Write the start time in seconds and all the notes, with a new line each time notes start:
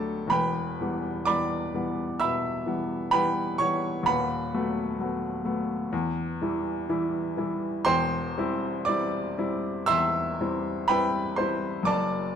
Already playing: D2 F#3 A3 D4 G4 A4 D5 G5 A5
0.27 E1 E2 G5 B5
0.31 B4
0.81 E3 G3 B3
1.25 E3 G3 B3 D5 B5 D6
1.74 E3 G3 B3
2.20 B2 E5 B5 E6
2.66 E3 G3 B3
3.11 E3 G3 B3 B4 G5 B5
3.58 E3 G3 B3 C#5 C#6
4.03 D#2 B4 F#5 B5
4.07 D#1
4.54 F#3 A3 B3
5.00 F#3 A3 B3
5.45 F#3 A3 B3
5.93 E2
6.42 E3 G3 E4
6.89 E3 G3 E4
7.37 E3 G3 E4
7.85 E1 E2 C5 G5 C6
8.38 G3 C4 E4
8.85 G3 C4 E4 D5 D6
9.38 G3 C4 E4
9.86 E2 E5 C6 E6
10.40 G3 C4 E4
10.88 G3 C4 E4 B4 G5 B5
11.36 G3 C4 E4 C5 C6
11.83 F#1 F#2 D5 A5 D6